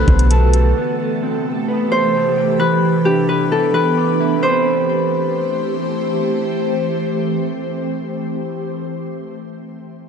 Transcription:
Already playing: ambient pad D3 A3 B3 F#4 A4, clean electric guitar D4, harp A4 B4, downlifter
0.08 808-style bass B1, clean electric guitar B3, kick, closed hi-hat
0.19 closed hi-hat
0.31 clean electric guitar A5, closed hi-hat
0.54 clean electric guitar A4, closed hi-hat
0.76 ambient pad C3 E3 A3 G4, clean electric guitar B3
0.99 clean electric guitar B3
1.23 clean electric guitar C4
1.68 clean electric guitar B4
1.91 clean electric guitar A3, harp C5
2.14 clean electric guitar C5
2.37 clean electric guitar G4
2.59 clean electric guitar E3, ambient pad B3 D4 B4, harp B4
2.83 clean electric guitar E3
3.05 clean electric guitar D4, harp G4
3.29 harp B4
3.51 clean electric guitar E3, harp A4
3.73 clean electric guitar E3, harp B4
3.97 clean electric guitar D6
4.20 clean electric guitar E4
4.37 clean electric guitar C4 G4
4.42 ambient pad E3 A3 C4 G4 C5, clean electric guitar A4, harp C5
4.49 clean electric guitar B5

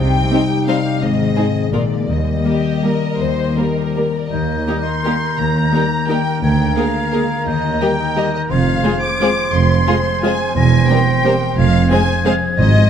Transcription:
Already playing: harp D#4 D#5
0.00 double bass section C2, cello section C3, harp C3, french horn section G3 D#4, violin section G5
0.16 harp C4
0.31 viola section G3 C4, harp D#4, violin section D#4 C5
0.50 harp G4
0.68 viola section G3 C4, violin section D#4 C5 F5, harp D#5
0.86 harp G4
1.02 double bass section G#1, harp G#2, cello section G#2, french horn section G#3 C4, violin section D#5
1.19 harp D#3
1.36 viola section G#3 D#4, harp D#4, violin section G#4 C5
1.55 harp G#4
1.72 double bass section A#1, cello section A#2, harp A#2, viola section G#3 A#3, french horn section A#3, violin section F4 A#4 D5
1.91 harp A#3 A#4
2.08 double bass section D#2, cello section D#2, harp D#3, french horn section G3 A#3, violin section D#5
2.27 harp G3
2.45 viola section G3 A#3, violin section G4, harp A#4
2.65 harp G4
2.84 viola section G3 A#3, violin section A#4, harp A#5
3.02 harp A#4
3.21 double bass section D#2, cello section D#2, harp D#3, violin section C5
3.38 harp G3
3.57 viola section G3 A#3, harp A#4, violin section A#4
3.78 harp G4
3.96 viola section G3 A#3, harp A#5
4.15 harp A#4, violin section D5
4.32 cello section D#2, double bass section D#2, harp D#3, cor anglais A#4, violin section D#5, flute G6
4.49 harp A#3
4.67 french horn section G3 A#3, viola section A#3 D#4, harp G4, violin section G4 A#4
4.86 harp A#4, violin section C6
5.04 french horn section G3 A#3, viola section A#3 D#4, harp G4, violin section G4 A#4
5.22 harp A#4
5.38 double bass section D#2, cello section D#2, harp D#3, violin section A#5
5.56 harp A#3
5.72 french horn section G3 A#3, viola section A#3 D#4, harp G4, violin section G4 A#4
5.91 harp A#4
6.06 french horn section G3 A#3, viola section A#3 D#4, harp G4, violin section G4 A#4 G5
6.27 harp A#4
6.42 cello section D2, double bass section D2, harp D3, cor anglais A#4, violin section G5, flute G#6
6.59 harp A#3
6.76 french horn section G#3 A#3, viola section A#3 G#4, harp G#4, violin section A#4 F5
6.95 harp A#4
7.12 french horn section G#3 A#3, viola section A#3 G#4, harp G#4, violin section A#4
7.30 harp A#4
7.47 cello section D#2, double bass section D#2, harp D#3, violin section D#5, flute G6
7.64 harp D#4
7.81 french horn section G3 A#3, viola section G3 G4, harp G4, violin section A#4 D#5 G5
8.00 harp D#5
8.16 french horn section G3 A#3, viola section G3 G4, harp G4, violin section A#4 D#5
8.34 harp A#4, violin section D#5
8.50 double bass section F1, cello section F2, harp F3, cor anglais C5, violin section F5, flute G#6
8.67 harp C4
8.83 french horn section G#3 C4, viola section G#3 F4, violin section G#4 C5, harp G#4
9.02 harp C5, violin section D6
9.20 french horn section G#3 C4, viola section G#3 F4, harp G#4, violin section G#4 C5
9.37 harp C4
9.53 double bass section F1, cello section F2, harp F3, violin section C6
9.69 harp G#3
9.87 french horn section G#3 C4, viola section G#3 F4, violin section G#4 C5, harp G#4
10.05 harp C5
10.22 viola section G#3 F4, french horn section G#3 C4, harp G#4, violin section G#4 C5 G#5
10.39 harp C4
10.55 double bass section E1, cello section E2, harp E3, cor anglais C5, violin section G#5, flute A#6
10.72 harp C4
10.89 viola section G3 C4, french horn section A#3 C4, harp G4, violin section A#4 C5 G5
11.06 harp C5
11.24 viola section G3 C4, french horn section A#3 C4, harp G4, violin section A#4 C5
11.41 harp A#4
11.56 double bass section F1, cello section F2, harp F3, violin section F5, flute G#6
11.73 harp C4
11.89 french horn section G#3 C4, viola section G#3 C4, harp G#4, violin section G#4 C5 G#5
12.08 harp C5
12.24 french horn section G#3 C4, viola section G#3 C4, harp G#4, violin section G#4 C5 F5
12.42 harp C4
12.58 double bass section G#1, timpani G#2, cello section G#2, harp G#2, cor anglais C5, violin section D#5
12.76 harp G#3

